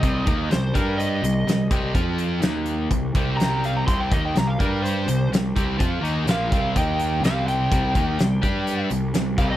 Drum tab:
HH |xxxxxxxx|xxxxxxxx|xxxxxxxx|xxxxxxxx|
SD |--o---o-|--o---o-|--o---o-|--o---o-|
BD |oo-o---o|o---oo--|oo-o---o|o--oo---|

HH |xxxxxxxx|
SD |--o---o-|
BD |oo-o---o|